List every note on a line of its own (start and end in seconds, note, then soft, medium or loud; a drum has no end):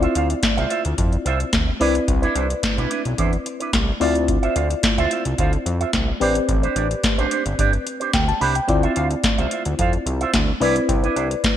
0.00 1.76 C4 medium
0.00 1.77 E4 medium
0.00 1.77 F4 medium
0.00 0.14 F4 medium
0.00 0.15 C5 medium
0.00 1.77 D5 medium
0.00 0.14 E5 medium
0.00 closed hi-hat soft
0.15 0.35 D2 loud
0.15 0.26 F4 medium
0.15 0.26 C5 medium
0.15 0.27 F5 medium
0.15 closed hi-hat medium
0.30 muted clean electric guitar stroke soft
0.30 closed hi-hat medium
0.43 muted clean electric guitar stroke soft
0.43 kick loud
0.43 snare loud
0.43 clap loud
0.43 closed hi-hat medium
0.57 0.67 C2 medium
0.57 0.68 F4 medium
0.57 0.70 C5 medium
0.57 0.69 E5 medium
0.57 closed hi-hat soft
0.70 0.81 F4 medium
0.70 0.81 C5 medium
0.70 0.82 E5 medium
0.70 closed hi-hat medium
0.85 0.94 D2 medium
0.85 closed hi-hat medium
0.98 1.17 F2 medium
0.98 muted clean electric guitar stroke soft
0.98 kick loud
0.98 closed hi-hat medium
1.12 muted clean electric guitar stroke soft
1.12 closed hi-hat soft
1.25 1.45 C2 loud
1.25 1.39 F4 medium
1.25 1.39 C5 medium
1.25 1.39 E5 medium
1.25 closed hi-hat medium
1.40 muted clean electric guitar stroke soft
1.40 closed hi-hat soft
1.53 1.72 D2 medium
1.53 muted clean electric guitar stroke soft
1.53 kick loud
1.53 snare loud
1.53 clap medium
1.53 closed hi-hat medium
1.67 muted clean electric guitar stroke soft
1.80 2.00 C2 loud
1.80 3.96 C4 medium
1.80 1.94 D4 medium
1.80 3.97 E4 medium
1.80 1.94 E4 medium
1.80 3.97 B4 medium
1.80 1.94 B4 medium
1.80 3.97 D5 medium
1.80 open hi-hat medium
1.95 muted clean electric guitar stroke soft
1.95 closed hi-hat medium
2.08 2.27 C2 loud
2.08 muted clean electric guitar stroke soft
2.08 kick loud
2.08 closed hi-hat medium
2.22 2.34 D4 medium
2.22 2.35 E4 medium
2.22 2.34 B4 medium
2.22 closed hi-hat soft
2.35 2.54 C2 loud
2.35 2.46 D4 medium
2.35 2.47 E4 medium
2.35 2.47 C5 medium
2.35 closed hi-hat medium
2.50 muted clean electric guitar stroke soft
2.50 closed hi-hat soft
2.63 muted clean electric guitar stroke soft
2.63 kick loud
2.63 snare loud
2.63 clap medium
2.63 closed hi-hat loud
2.77 2.87 B1 medium
2.77 2.89 D4 medium
2.77 2.90 E4 medium
2.77 2.89 B4 medium
2.77 closed hi-hat soft
2.90 3.01 D4 medium
2.90 3.01 E4 medium
2.90 3.02 B4 medium
2.90 closed hi-hat medium
3.05 3.14 B1 medium
3.05 muted clean electric guitar stroke soft
3.05 closed hi-hat medium
3.18 3.37 E2 medium
3.18 3.32 D4 medium
3.18 3.32 E4 medium
3.18 3.32 C5 medium
3.18 kick loud
3.18 closed hi-hat medium
3.33 muted clean electric guitar stroke soft
3.33 closed hi-hat soft
3.46 muted clean electric guitar stroke soft
3.46 closed hi-hat medium
3.60 3.71 D4 medium
3.60 3.70 E4 medium
3.60 3.70 B4 medium
3.60 closed hi-hat soft
3.73 3.92 C2 loud
3.73 kick loud
3.73 snare loud
3.73 clap medium
3.73 closed hi-hat loud
3.87 muted clean electric guitar stroke soft
4.00 4.38 D2 loud
4.00 6.17 C4 medium
4.00 6.17 E4 medium
4.00 4.14 F4 medium
4.00 6.17 F4 medium
4.00 4.15 C5 medium
4.00 6.17 D5 medium
4.00 4.14 E5 medium
4.00 open hi-hat medium
4.15 muted clean electric guitar stroke soft
4.15 closed hi-hat medium
4.28 muted clean electric guitar stroke soft
4.28 kick loud
4.28 closed hi-hat medium
4.43 4.55 F4 medium
4.43 4.55 C5 medium
4.43 4.55 E5 medium
4.43 closed hi-hat soft
4.56 4.75 D2 loud
4.56 4.66 F4 medium
4.56 4.67 C5 medium
4.56 4.67 F5 medium
4.56 closed hi-hat medium
4.70 muted clean electric guitar stroke soft
4.70 closed hi-hat medium
4.83 muted clean electric guitar stroke soft
4.83 kick loud
4.83 snare loud
4.83 clap loud
4.83 closed hi-hat loud
4.98 5.07 D2 medium
4.98 5.10 F4 medium
4.98 5.10 C5 medium
4.98 5.10 E5 medium
4.98 closed hi-hat soft
5.11 5.22 F4 medium
5.11 5.22 C5 medium
5.11 5.22 E5 medium
5.11 closed hi-hat medium
5.25 5.35 C2 medium
5.25 muted clean electric guitar stroke soft
5.25 closed hi-hat medium
5.38 5.57 D2 loud
5.38 5.52 F4 medium
5.38 5.52 C5 medium
5.38 5.53 F5 medium
5.38 kick loud
5.38 closed hi-hat medium
5.53 muted clean electric guitar stroke soft
5.53 closed hi-hat soft
5.66 5.85 F2 medium
5.66 muted clean electric guitar stroke soft
5.66 closed hi-hat medium
5.80 5.91 F4 medium
5.80 5.90 C5 medium
5.80 5.90 E5 medium
5.80 closed hi-hat soft
5.93 6.12 C2 medium
5.93 muted clean electric guitar stroke soft
5.93 kick loud
5.93 snare loud
5.93 clap medium
5.93 closed hi-hat loud
6.08 muted clean electric guitar stroke soft
6.20 6.40 A1 loud
6.20 8.37 C4 medium
6.20 6.34 D4 medium
6.20 8.37 G4 medium
6.20 6.35 G4 medium
6.20 8.37 B4 medium
6.20 6.34 C5 medium
6.20 8.38 D5 medium
6.20 open hi-hat medium
6.35 muted clean electric guitar stroke soft
6.35 closed hi-hat medium
6.48 6.67 A1 loud
6.48 muted clean electric guitar stroke soft
6.48 kick loud
6.48 closed hi-hat medium
6.63 6.75 D4 medium
6.63 6.75 G4 medium
6.63 6.75 C5 medium
6.63 closed hi-hat soft
6.76 6.95 A1 loud
6.76 6.87 D4 medium
6.76 6.87 G4 medium
6.76 6.88 D5 medium
6.76 closed hi-hat medium
6.91 muted clean electric guitar stroke soft
6.91 closed hi-hat medium
7.04 muted clean electric guitar stroke soft
7.04 kick loud
7.04 snare loud
7.04 clap loud
7.04 closed hi-hat loud
7.18 7.27 A1 loud
7.18 7.30 D4 medium
7.18 7.31 G4 medium
7.18 7.30 C5 medium
7.18 closed hi-hat soft
7.31 7.42 D4 medium
7.31 7.42 G4 medium
7.31 7.43 C5 medium
7.31 closed hi-hat medium
7.46 7.55 G1 medium
7.46 closed hi-hat medium
7.58 7.78 G1 medium
7.58 7.72 D4 medium
7.58 7.72 G4 medium
7.58 7.72 D5 medium
7.58 kick loud
7.58 closed hi-hat medium
7.73 muted clean electric guitar stroke soft
7.73 closed hi-hat soft
7.86 muted clean electric guitar stroke soft
7.86 closed hi-hat medium
8.00 8.11 D4 medium
8.00 8.10 G4 medium
8.00 8.10 C5 medium
8.00 closed hi-hat soft
8.13 8.32 D2 loud
8.13 8.28 G5 medium
8.13 kick loud
8.13 snare loud
8.13 clap medium
8.13 closed hi-hat medium
8.28 8.41 A5 medium
8.28 muted clean electric guitar stroke soft
8.28 closed hi-hat soft
8.40 8.60 C2 loud
8.40 8.54 D4 medium
8.40 8.55 G4 medium
8.40 8.54 C5 medium
8.40 8.55 B5 medium
8.40 open hi-hat medium
8.55 8.82 G5 medium
8.55 muted clean electric guitar stroke soft
8.55 closed hi-hat medium
8.68 8.88 D2 loud
8.68 10.57 C4 medium
8.68 10.57 E4 medium
8.68 10.58 F4 medium
8.68 10.58 D5 medium
8.68 muted clean electric guitar stroke soft
8.68 kick loud
8.68 closed hi-hat medium
8.83 8.95 F4 medium
8.83 8.96 C5 medium
8.83 8.95 E5 medium
8.83 closed hi-hat soft
8.96 9.15 D2 loud
8.96 9.07 F4 medium
8.96 9.07 C5 medium
8.96 9.08 F5 medium
8.96 closed hi-hat medium
9.11 muted clean electric guitar stroke soft
9.11 closed hi-hat soft
9.24 muted clean electric guitar stroke soft
9.24 kick loud
9.24 snare loud
9.24 clap loud
9.24 closed hi-hat medium
9.38 9.47 C2 medium
9.38 9.50 F4 medium
9.38 9.51 C5 medium
9.38 9.50 E5 medium
9.38 closed hi-hat soft
9.51 9.62 F4 medium
9.51 9.62 C5 medium
9.51 9.63 E5 medium
9.51 closed hi-hat medium
9.65 9.75 D2 medium
9.65 muted clean electric guitar stroke soft
9.65 closed hi-hat medium
9.79 9.98 F2 medium
9.79 9.92 F4 medium
9.79 9.93 C5 medium
9.79 9.93 F5 medium
9.79 kick loud
9.79 closed hi-hat medium
9.93 muted clean electric guitar stroke soft
9.93 closed hi-hat soft
10.06 10.25 C2 loud
10.06 muted clean electric guitar stroke soft
10.06 closed hi-hat medium
10.21 10.31 F4 medium
10.21 10.31 C5 medium
10.21 10.30 E5 medium
10.21 closed hi-hat soft
10.34 10.53 D2 medium
10.34 kick loud
10.34 snare loud
10.34 clap medium
10.34 closed hi-hat loud
10.48 muted clean electric guitar stroke soft
10.60 10.80 C2 loud
10.60 11.57 C4 medium
10.60 10.75 D4 medium
10.60 11.57 E4 medium
10.60 10.75 E4 medium
10.60 11.57 B4 medium
10.60 10.75 B4 medium
10.60 11.57 D5 medium
10.60 open hi-hat medium
10.76 muted clean electric guitar stroke soft
10.76 closed hi-hat medium
10.89 11.08 C2 loud
10.89 muted clean electric guitar stroke soft
10.89 kick loud
10.89 closed hi-hat medium
11.03 11.15 D4 medium
11.03 11.16 E4 medium
11.03 11.15 B4 medium
11.03 closed hi-hat soft
11.16 11.35 C2 loud
11.16 11.27 D4 medium
11.16 11.27 E4 medium
11.16 11.28 C5 medium
11.16 closed hi-hat medium
11.31 muted clean electric guitar stroke soft
11.31 closed hi-hat soft
11.44 muted clean electric guitar stroke soft
11.44 kick loud
11.44 snare loud
11.44 clap medium
11.44 closed hi-hat medium